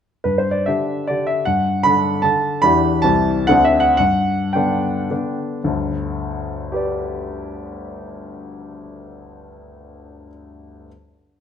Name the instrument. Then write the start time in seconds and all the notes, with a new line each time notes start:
grand piano
0.24 G2 B4
0.38 C5
0.51 D5
0.66 D3 D4 G4 E5
1.07 D3 D4 G4 D5
1.27 E5
1.45 G2 F#5
1.83 D3 D4 A4 B5
2.22 D3 D4 A4 A5
2.62 E2 E3 D4 G4 B5
3.02 C2 E3 C4 G4 A5
3.47 D2 D3 C4 D4 F#5
3.65 E5
3.80 F#5
3.97 G2 F#5
4.53 D3 B3 D4 G5
5.10 D3 B3 D4
5.64 G1 D2
6.72 G4 B4
6.76 D5